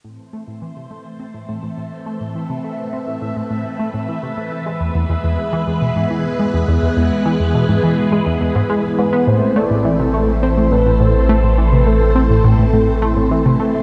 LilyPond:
<<
  \new Staff \with { instrumentName = "Synth texture" } { \time 4/4 \key a \minor \tempo 4 = 104 e''1~ | e''1~ | e''1~ | e''1 |
r1 | r1 | }
  \new Staff \with { instrumentName = "Analog synth lead" } { \time 4/4 \key a \minor r1 | r1 | r1 | r2. r8 b'8 |
c''8 d''4 r8 c''8 b'8 c''4 | b'8 a'2. r8 | }
  \new Staff \with { instrumentName = "String machine" } { \time 4/4 \key a \minor << { c''1 | b'1~ | b'1~ | b'1 |
c''1~ | c''1 | } \\ { <e a c' a'>1~ | <e a c' a'>1 | <e gis b gis'>1~ | <e gis b gis'>1 |
<e a c' a'>1~ | <e a c' a'>1 | } >> }
  \new Staff \with { instrumentName = "Synth arpeggio sound" } { \clef bass \time 4/4 \key a \minor a,16 r16 a16 a,16 e16 c16 a16 r16 c'16 a,16 a,16 a,16 a,16 r16 a16 a,16 | e16 c16 a16 r16 c'16 a,16 a,16 a,16 a,16 r16 a16 a,16 e16 c16 a16 r16 | gis16 e,16 e,16 e,16 e,16 r16 e16 e,16 b,16 gis,16 e16 r16 gis16 e,16 e,16 e,16 | e,16 r16 e16 e,16 b,16 gis,16 e16 r16 gis16 e,16 e,16 gis,16 gis16 r16 gis,16 b16 |
a,16 r16 a16 a,16 e16 c16 a16 r16 c'16 a,16 a,16 a,16 a,16 r16 a16 a,16 | e16 c16 a16 r16 c'16 a,16 a,16 a,16 a,16 r16 a16 a,16 e16 c16 a16 r16 | }
  \new Staff \with { instrumentName = "Analog synth bass" } { \clef bass \time 4/4 \key a \minor r1 | r1 | r1 | r1 |
a,,1~ | a,,1 | }
>>